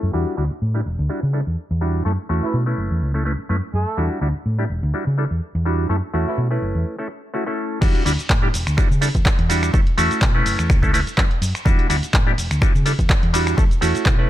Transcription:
Already playing: clav A3 C#4 E4 A4
0.03 fingered electric bass F#2
0.13 fingered electric bass E2, clav G3 D4 E4 F#4
0.37 fingered electric bass D2, clav G3 D4 E4 F#4
0.51 muted fingered electric bass stroke
0.62 fingered electric bass A2
0.74 clav G3 D4 E4 G4
0.86 fingered electric bass E1
0.99 fingered electric bass D2
1.09 clav G3 D4 E4 F#4
1.23 fingered electric bass C#3
1.33 clav G3 D4 E4 A4
1.47 fingered electric bass E2
1.71 fingered electric bass E2
1.81 clav G3 D4 E4 F#4
2.05 fingered electric bass F#2, clav A3 C#4 E4 A4
2.29 fingered electric bass E2, clav A3 C#4 E4 F#4
2.43 horn section E3 E4, muted fingered electric bass stroke
2.54 fingered electric bass B2
2.66 clav A3 C#4 E4 B4
2.78 fingered electric bass F#1
2.91 fingered electric bass E2
3.02 fingered electric bass C#2
3.14 clav A3 C#4 E4 A4
3.25 clav A3 C#4 E4 B4
3.39 muted fingered electric bass stroke
3.49 fingered electric bass F#2, clav A3 C#4 E4 B4
3.74 fingered electric bass F#2, horn section A3 A4
3.97 fingered electric bass E2, clav G3 D4 E4 F#4
4.21 fingered electric bass D2, clav G3 D4 E4 F#4
4.35 muted fingered electric bass stroke
4.46 fingered electric bass A2
4.59 clav G3 D4 E4 G4
4.70 fingered electric bass E1
4.83 fingered electric bass D2
4.94 clav G3 D4 E4 F#4
5.07 fingered electric bass C#3
5.18 clav G3 D4 E4 A4
5.31 fingered electric bass E2
5.55 fingered electric bass E2
5.65 clav G3 D4 E4 F#4
5.89 fingered electric bass F#2, clav A3 C#4 E4 A4
6.14 fingered electric bass E2, clav A3 C#4 E4 F#4
6.27 horn section E3 E4, muted fingered electric bass stroke
6.38 fingered electric bass B2
6.51 clav A3 C#4 E4 B4
6.62 fingered electric bass F#1
6.75 fingered electric bass E2
6.99 clav A3 C#4 E4 A4
7.34 clav A3 C#4 E4 F#4
7.46 clav A3 C#4 E4 A4
7.81 fingered electric bass E2, clav G3 D4 E4 F#4, kick, crash, ride, cabasa
7.95 closed hi-hat
8.05 fingered electric bass D2, clav G3 D4 E4 F#4, open hi-hat, ride, cabasa
8.19 closed hi-hat, cabasa
8.30 fingered electric bass A2, kick, clap, cabasa
8.42 clav G3 D4 E4 G4
8.54 fingered electric bass E1, open hi-hat, ride, cabasa
8.67 fingered electric bass D2, finger snap, closed hi-hat, cabasa
8.77 clav G3 D4 E4 F#4, finger snap, muted fingered electric bass stroke, kick, ride, cabasa
8.91 fingered electric bass C#3, cabasa
9.01 clav G3 D4 E4 A4, open hi-hat, ride, cabasa
9.15 fingered electric bass E2, kick, closed hi-hat, cabasa
9.26 kick, clap, ride, cabasa
9.39 fingered electric bass E2, closed hi-hat
9.49 clav G3 D4 E4 F#4, open hi-hat, ride, cabasa
9.63 finger snap, closed hi-hat, cabasa
9.73 fingered electric bass F#2, clav A3 C#4 E4 A4, kick, ride, cabasa
9.87 closed hi-hat
9.98 fingered electric bass E2, clav A3 C#4 E4 F#4, open hi-hat, ride, cabasa
10.11 closed hi-hat, cabasa
10.22 fingered electric bass B2, kick, clap, cabasa
10.35 clav A3 C#4 E4 B4
10.46 fingered electric bass F#1, open hi-hat, ride, cabasa
10.59 fingered electric bass E2, finger snap, closed hi-hat, cabasa
10.70 finger snap, kick, ride, cabasa
10.82 clav A3 C#4 E4 A4, kick, cabasa
10.93 clav A3 C#4 E4 B4, open hi-hat, ride, cabasa
11.07 muted fingered electric bass stroke, closed hi-hat, cabasa
11.17 fingered electric bass F#2, clav A3 C#4 E4 B4, kick, clap, ride, cabasa
11.31 closed hi-hat
11.42 fingered electric bass F#2, open hi-hat, ride, cabasa
11.55 finger snap, closed hi-hat, cabasa
11.65 fingered electric bass E2, clav G3 D4 E4 F#4, kick, ride, cabasa
11.79 closed hi-hat
11.89 fingered electric bass D2, clav G3 D4 E4 F#4, open hi-hat, ride, cabasa
12.03 muted fingered electric bass stroke, closed hi-hat, cabasa
12.14 fingered electric bass A2, kick, clap, ride, cabasa
12.26 clav G3 D4 E4 G4
12.38 fingered electric bass E1, open hi-hat, ride, cabasa
12.51 fingered electric bass D2, finger snap, closed hi-hat, cabasa
12.62 clav G3 D4 E4 F#4, finger snap, kick, ride, cabasa
12.75 fingered electric bass C#3, cabasa
12.86 clav G3 D4 E4 A4, open hi-hat, ride, cabasa
12.99 fingered electric bass E2, kick, closed hi-hat, cabasa
13.10 kick, clap, ride, cabasa
13.23 fingered electric bass E2, closed hi-hat
13.33 clav G3 D4 E4 F#4, open hi-hat, ride, cabasa
13.47 finger snap, closed hi-hat, cabasa
13.57 fingered electric bass F#2, clav A3 C#4 E4 A4, kick, ride, cabasa
13.71 closed hi-hat, cabasa
13.81 fingered electric bass E2, clav A3 C#4 E4 F#4, open hi-hat, ride, cabasa
13.95 muted fingered electric bass stroke, closed hi-hat, cabasa
14.06 fingered electric bass B2, kick, clap, ride, cabasa
14.18 clav A3 C#4 E4 B4

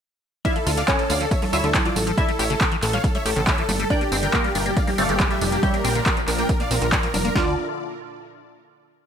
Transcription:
0.45 acid bass D3, synth pluck E4 E5, supersaw synth D5 F5, kick, closed hi-hat, tambourine
0.56 acid bass F3, supersaw synth A4, closed hi-hat, tambourine
0.66 analog synth bass D2, acid bass F4, supersaw synth A4, open hi-hat, tambourine
0.77 acid bass D3, supersaw synth D5 F5, closed hi-hat, tambourine
0.88 acid bass D3, synth pluck C#4 C#5, supersaw synth A4, kick, clap, closed hi-hat, tambourine
0.99 acid bass E3, supersaw synth A4, closed hi-hat, tambourine
1.09 analog synth bass D2, acid bass A3, supersaw synth D5 F5, open hi-hat, tambourine
1.20 acid bass F3, supersaw synth A4, closed hi-hat, tambourine
1.31 acid bass D3, supersaw synth C#5 E5, kick, closed hi-hat, tambourine
1.42 acid bass F3, supersaw synth A4, open hi-hat, tambourine, high conga
1.53 analog synth bass D2, synth pluck E4 E5, acid bass F4, supersaw synth C#5 E5, open hi-hat, tambourine
1.64 analog synth bass D2, acid bass D3, supersaw synth A4, closed hi-hat, tambourine
1.74 acid bass D3, supersaw synth A4, kick, clap, closed hi-hat, tambourine, high conga
1.85 acid bass E3, supersaw synth F4 D5, closed hi-hat, tambourine
1.96 analog synth bass A1, acid bass A3, supersaw synth A4, open hi-hat, tambourine, high conga
2.07 acid bass F3, supersaw synth A4, closed hi-hat, tambourine
2.18 acid bass C#3, synth pluck E4 E5, supersaw synth A4 D5, kick, closed hi-hat, tambourine
2.28 acid bass G3, supersaw synth A4, closed hi-hat, tambourine
2.39 analog synth bass A1, acid bass G4, supersaw synth C#5 E5, open hi-hat, tambourine
2.50 acid bass C#3, supersaw synth A4, closed hi-hat, tambourine
2.61 acid bass C#3, supersaw synth A4, kick, clap, closed hi-hat, tambourine
2.72 acid bass E3, closed hi-hat, tambourine
2.82 analog synth bass A1, acid bass A3, supersaw synth A4, clap, open hi-hat, tambourine
2.93 acid bass G3, supersaw synth C#5 F5, closed hi-hat, tambourine
3.04 acid bass C#3, supersaw synth A4, kick, closed hi-hat, tambourine
3.15 acid bass G3, supersaw synth C#5 E5, closed hi-hat, tambourine
3.25 analog synth bass A1, acid bass G4, supersaw synth A4, open hi-hat, tambourine
3.36 analog synth bass A1, acid bass C#3, supersaw synth A4, closed hi-hat, tambourine
3.47 acid bass C#3, supersaw synth C#5 E5, kick, clap, closed hi-hat, tambourine
3.58 acid bass E3, supersaw synth A4, closed hi-hat, tambourine
3.69 analog synth bass G1, acid bass A3, supersaw synth A4, open hi-hat, tambourine, high conga
3.79 acid bass G3, supersaw synth A4, closed hi-hat, tambourine
3.90 analog synth pad A#2 G3 D4, acid bass D3, synth pluck D4 D5, supersaw synth A#4 G5, kick, closed hi-hat, tambourine
4.01 acid bass A#3, supersaw synth G4, closed hi-hat, tambourine
4.12 analog synth bass G1, acid bass C4, supersaw synth G4, open hi-hat, tambourine
4.23 acid bass D3, supersaw synth A#4 G5, closed hi-hat, tambourine
4.33 acid bass D3, synth pluck A#3 A#4, kick, clap, closed hi-hat, tambourine
4.44 acid bass G3, supersaw synth G4, closed hi-hat, tambourine
4.55 analog synth bass G1, acid bass D4, supersaw synth A#4 G5, open hi-hat, tambourine
4.66 acid bass A#3, supersaw synth G4, closed hi-hat, tambourine
4.77 acid bass D3, supersaw synth D5 F5, kick, closed hi-hat, tambourine
4.87 acid bass A#3, supersaw synth G4, open hi-hat, tambourine, high conga
4.98 analog synth bass G1, synth pluck A3 A4, acid bass C4, supersaw synth D5 F5, open hi-hat, tambourine
5.09 analog synth bass G1, acid bass D3, supersaw synth G4, closed hi-hat, tambourine
5.20 acid bass D3, supersaw synth G4, kick, clap, closed hi-hat, tambourine, high conga
5.30 acid bass G3, supersaw synth G4 E5, closed hi-hat, tambourine
5.41 analog synth bass F1, acid bass D4, supersaw synth G4, open hi-hat, tambourine, high conga
5.52 acid bass A#3, supersaw synth G4, closed hi-hat, tambourine
5.63 acid bass D3, analog synth pad F3, synth pluck G3 G4, supersaw synth C#5 E5, kick, closed hi-hat, tambourine
5.74 acid bass A#3, supersaw synth A#4, closed hi-hat, tambourine
5.84 analog synth bass A#1, acid bass C4, supersaw synth A#4 G5, open hi-hat, tambourine
5.95 acid bass D3, supersaw synth A#4, closed hi-hat, tambourine
6.06 acid bass D3, supersaw synth A#4, kick, clap, closed hi-hat, tambourine
6.17 acid bass F3, closed hi-hat, tambourine
6.28 analog synth bass A#1, acid bass D4, supersaw synth A#4, clap, open hi-hat, tambourine
6.38 acid bass A#3, supersaw synth A#4 G5, closed hi-hat, tambourine
6.49 acid bass D3, supersaw synth A#4, kick, closed hi-hat, tambourine
6.60 acid bass A#3, supersaw synth D5 F5, closed hi-hat, tambourine
6.71 analog synth bass A#1, acid bass C4, supersaw synth A#4, open hi-hat, tambourine
6.81 analog synth bass A#1, acid bass D3, supersaw synth A#4, closed hi-hat, tambourine
6.92 acid bass D3, supersaw synth A#4 D5, kick, clap, closed hi-hat, tambourine
7.03 acid bass F3, supersaw synth A#4, closed hi-hat, tambourine
7.14 analog synth bass F1, acid bass D4, supersaw synth A#4, open hi-hat, tambourine, high conga
7.25 acid bass A#3, supersaw synth A#4, closed hi-hat, tambourine
7.35 analog synth bass D2, acid bass D3, analog synth pad D3 D4 E4 F4 A4, synth pluck F4, supersaw synth D5, kick, snare

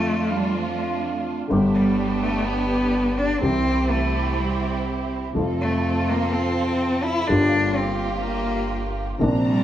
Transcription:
Already playing: upright piano F2 D3 F3 A3 F4, upright bass F2, cello A3, string section A3 D4 F4
0.31 cello G3
0.55 cello F3
1.48 upright piano G1 G2 D3 G3 B3, upright bass G1, string section B3 D4 G4
1.52 upright piano G4
1.74 cello G3
2.23 cello A3
2.45 cello B3
3.19 cello D4
3.40 upright piano C2 C3 E3 G3 C4 G4, upright bass C2, cello C4, string section C4 E4 G4
3.91 cello A3
4.39 cello G3
5.33 upright piano F2 C3 F3 A3, upright bass F2, string section C4 F4 A4
5.38 upright piano F4
5.61 cello A3
6.09 cello A#3
6.33 cello C4
7.04 cello E4
7.27 upright piano G1 G2 D3 G3 A#3 F4, upright bass G1, string section A#3 F4 G4, cello D4
7.76 cello C4
8.24 cello A#3
9.18 upright piano A#1 A#2 C3 F3 C4, upright bass A#1, string section C4 D4 A#5
9.22 upright piano D4
9.45 cello G3

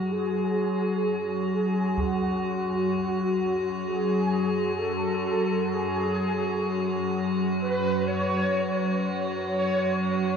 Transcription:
Already playing: synth drone F#2 F#3 F#4, ambient pad F#3 F#4 C#5 F#5, soft synth lead F#4
0.12 soft synth lead G#4
1.53 soft synth lead G#4
1.97 soft synth lead F#4, taiko
2.92 soft synth lead F#4
3.84 soft synth lead G#4
4.78 soft synth lead A4
5.73 soft synth lead G#4
7.61 soft synth lead B4
8.07 soft synth lead C#5
9.47 soft synth lead C#5

